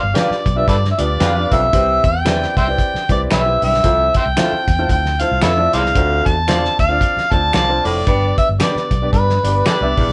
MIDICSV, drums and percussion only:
0, 0, Header, 1, 2, 480
1, 0, Start_track
1, 0, Tempo, 528634
1, 1572, Time_signature, 4, 2, 24, 8
1, 9194, End_track
2, 0, Start_track
2, 0, Title_t, "Drums"
2, 138, Note_on_c, 9, 42, 98
2, 147, Note_on_c, 9, 38, 123
2, 229, Note_off_c, 9, 42, 0
2, 238, Note_off_c, 9, 38, 0
2, 287, Note_on_c, 9, 38, 36
2, 378, Note_off_c, 9, 38, 0
2, 416, Note_on_c, 9, 36, 86
2, 420, Note_on_c, 9, 42, 71
2, 507, Note_off_c, 9, 36, 0
2, 511, Note_off_c, 9, 42, 0
2, 614, Note_on_c, 9, 36, 90
2, 625, Note_on_c, 9, 42, 87
2, 705, Note_off_c, 9, 36, 0
2, 716, Note_off_c, 9, 42, 0
2, 769, Note_on_c, 9, 38, 36
2, 859, Note_off_c, 9, 38, 0
2, 895, Note_on_c, 9, 42, 88
2, 986, Note_off_c, 9, 42, 0
2, 1093, Note_on_c, 9, 42, 102
2, 1097, Note_on_c, 9, 38, 124
2, 1184, Note_off_c, 9, 42, 0
2, 1188, Note_off_c, 9, 38, 0
2, 1376, Note_on_c, 9, 36, 93
2, 1379, Note_on_c, 9, 42, 85
2, 1467, Note_off_c, 9, 36, 0
2, 1470, Note_off_c, 9, 42, 0
2, 1573, Note_on_c, 9, 42, 95
2, 1574, Note_on_c, 9, 36, 111
2, 1664, Note_off_c, 9, 36, 0
2, 1664, Note_off_c, 9, 42, 0
2, 1852, Note_on_c, 9, 36, 96
2, 1852, Note_on_c, 9, 42, 69
2, 1942, Note_off_c, 9, 42, 0
2, 1943, Note_off_c, 9, 36, 0
2, 2049, Note_on_c, 9, 26, 91
2, 2049, Note_on_c, 9, 42, 103
2, 2058, Note_on_c, 9, 38, 126
2, 2140, Note_off_c, 9, 26, 0
2, 2140, Note_off_c, 9, 42, 0
2, 2149, Note_off_c, 9, 38, 0
2, 2201, Note_on_c, 9, 38, 36
2, 2292, Note_off_c, 9, 38, 0
2, 2332, Note_on_c, 9, 36, 93
2, 2333, Note_on_c, 9, 42, 72
2, 2422, Note_off_c, 9, 36, 0
2, 2424, Note_off_c, 9, 42, 0
2, 2528, Note_on_c, 9, 36, 87
2, 2534, Note_on_c, 9, 42, 79
2, 2619, Note_off_c, 9, 36, 0
2, 2625, Note_off_c, 9, 42, 0
2, 2680, Note_on_c, 9, 38, 38
2, 2770, Note_off_c, 9, 38, 0
2, 2808, Note_on_c, 9, 36, 94
2, 2812, Note_on_c, 9, 42, 86
2, 2899, Note_off_c, 9, 36, 0
2, 2903, Note_off_c, 9, 42, 0
2, 3001, Note_on_c, 9, 26, 99
2, 3007, Note_on_c, 9, 42, 94
2, 3011, Note_on_c, 9, 38, 126
2, 3092, Note_off_c, 9, 26, 0
2, 3098, Note_off_c, 9, 42, 0
2, 3102, Note_off_c, 9, 38, 0
2, 3288, Note_on_c, 9, 46, 59
2, 3379, Note_off_c, 9, 46, 0
2, 3395, Note_on_c, 9, 38, 39
2, 3486, Note_off_c, 9, 38, 0
2, 3486, Note_on_c, 9, 42, 99
2, 3489, Note_on_c, 9, 36, 111
2, 3577, Note_off_c, 9, 42, 0
2, 3580, Note_off_c, 9, 36, 0
2, 3763, Note_on_c, 9, 42, 78
2, 3768, Note_on_c, 9, 36, 91
2, 3854, Note_off_c, 9, 42, 0
2, 3858, Note_off_c, 9, 36, 0
2, 3967, Note_on_c, 9, 26, 107
2, 3968, Note_on_c, 9, 42, 106
2, 3977, Note_on_c, 9, 38, 122
2, 4057, Note_off_c, 9, 26, 0
2, 4059, Note_off_c, 9, 42, 0
2, 4067, Note_off_c, 9, 38, 0
2, 4247, Note_on_c, 9, 36, 92
2, 4247, Note_on_c, 9, 42, 78
2, 4337, Note_off_c, 9, 36, 0
2, 4338, Note_off_c, 9, 42, 0
2, 4444, Note_on_c, 9, 36, 99
2, 4447, Note_on_c, 9, 42, 92
2, 4534, Note_off_c, 9, 36, 0
2, 4538, Note_off_c, 9, 42, 0
2, 4589, Note_on_c, 9, 38, 39
2, 4680, Note_off_c, 9, 38, 0
2, 4719, Note_on_c, 9, 42, 83
2, 4809, Note_off_c, 9, 42, 0
2, 4917, Note_on_c, 9, 26, 102
2, 4922, Note_on_c, 9, 42, 107
2, 4925, Note_on_c, 9, 38, 122
2, 5008, Note_off_c, 9, 26, 0
2, 5013, Note_off_c, 9, 42, 0
2, 5016, Note_off_c, 9, 38, 0
2, 5206, Note_on_c, 9, 42, 81
2, 5297, Note_off_c, 9, 42, 0
2, 5319, Note_on_c, 9, 38, 36
2, 5408, Note_on_c, 9, 36, 113
2, 5408, Note_on_c, 9, 42, 104
2, 5410, Note_off_c, 9, 38, 0
2, 5498, Note_off_c, 9, 36, 0
2, 5498, Note_off_c, 9, 42, 0
2, 5686, Note_on_c, 9, 36, 92
2, 5686, Note_on_c, 9, 42, 68
2, 5776, Note_off_c, 9, 36, 0
2, 5777, Note_off_c, 9, 42, 0
2, 5883, Note_on_c, 9, 26, 103
2, 5888, Note_on_c, 9, 42, 100
2, 5897, Note_on_c, 9, 38, 127
2, 5974, Note_off_c, 9, 26, 0
2, 5979, Note_off_c, 9, 42, 0
2, 5988, Note_off_c, 9, 38, 0
2, 6035, Note_on_c, 9, 38, 37
2, 6126, Note_off_c, 9, 38, 0
2, 6167, Note_on_c, 9, 36, 97
2, 6169, Note_on_c, 9, 42, 74
2, 6258, Note_off_c, 9, 36, 0
2, 6260, Note_off_c, 9, 42, 0
2, 6365, Note_on_c, 9, 36, 93
2, 6371, Note_on_c, 9, 42, 89
2, 6456, Note_off_c, 9, 36, 0
2, 6462, Note_off_c, 9, 42, 0
2, 6517, Note_on_c, 9, 38, 39
2, 6608, Note_off_c, 9, 38, 0
2, 6643, Note_on_c, 9, 36, 98
2, 6645, Note_on_c, 9, 42, 76
2, 6734, Note_off_c, 9, 36, 0
2, 6735, Note_off_c, 9, 42, 0
2, 6840, Note_on_c, 9, 26, 99
2, 6845, Note_on_c, 9, 42, 97
2, 6849, Note_on_c, 9, 38, 114
2, 6930, Note_off_c, 9, 26, 0
2, 6936, Note_off_c, 9, 42, 0
2, 6939, Note_off_c, 9, 38, 0
2, 7130, Note_on_c, 9, 46, 58
2, 7220, Note_off_c, 9, 46, 0
2, 7327, Note_on_c, 9, 42, 101
2, 7329, Note_on_c, 9, 36, 113
2, 7417, Note_off_c, 9, 42, 0
2, 7419, Note_off_c, 9, 36, 0
2, 7608, Note_on_c, 9, 36, 90
2, 7608, Note_on_c, 9, 42, 67
2, 7699, Note_off_c, 9, 36, 0
2, 7699, Note_off_c, 9, 42, 0
2, 7807, Note_on_c, 9, 42, 102
2, 7812, Note_on_c, 9, 26, 101
2, 7815, Note_on_c, 9, 38, 116
2, 7898, Note_off_c, 9, 42, 0
2, 7903, Note_off_c, 9, 26, 0
2, 7906, Note_off_c, 9, 38, 0
2, 7958, Note_on_c, 9, 38, 35
2, 8049, Note_off_c, 9, 38, 0
2, 8090, Note_on_c, 9, 36, 92
2, 8091, Note_on_c, 9, 42, 77
2, 8180, Note_off_c, 9, 36, 0
2, 8182, Note_off_c, 9, 42, 0
2, 8289, Note_on_c, 9, 36, 94
2, 8297, Note_on_c, 9, 42, 81
2, 8380, Note_off_c, 9, 36, 0
2, 8388, Note_off_c, 9, 42, 0
2, 8439, Note_on_c, 9, 38, 40
2, 8530, Note_off_c, 9, 38, 0
2, 8577, Note_on_c, 9, 42, 86
2, 8668, Note_off_c, 9, 42, 0
2, 8769, Note_on_c, 9, 26, 105
2, 8770, Note_on_c, 9, 42, 101
2, 8774, Note_on_c, 9, 38, 118
2, 8860, Note_off_c, 9, 26, 0
2, 8861, Note_off_c, 9, 42, 0
2, 8865, Note_off_c, 9, 38, 0
2, 9058, Note_on_c, 9, 36, 92
2, 9059, Note_on_c, 9, 46, 55
2, 9149, Note_off_c, 9, 36, 0
2, 9150, Note_off_c, 9, 46, 0
2, 9194, End_track
0, 0, End_of_file